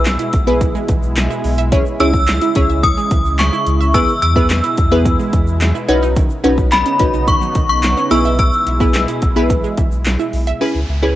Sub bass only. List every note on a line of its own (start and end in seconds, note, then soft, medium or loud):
0.00 0.17 B1 medium
0.34 0.73 B1 loud
0.89 1.28 B1 medium
1.44 1.83 B1 loud
2.00 2.39 C#2 medium
2.56 2.95 C#2 loud
3.11 3.50 C#2 loud
3.67 4.06 C#2 medium
4.22 4.61 E2 medium
4.78 5.17 E2 loud
5.33 5.72 E2 medium
5.89 6.28 B1 medium
6.44 6.83 B1 medium
7.00 7.39 B1 loud
7.55 7.94 B1 medium
8.11 8.50 B1 medium
8.67 9.06 B1 medium
9.22 9.61 B1 loud
9.78 10.17 B1 loud
10.33 10.53 B1 medium
10.75 10.85 C#2 medium
10.89 11.15 C#2 medium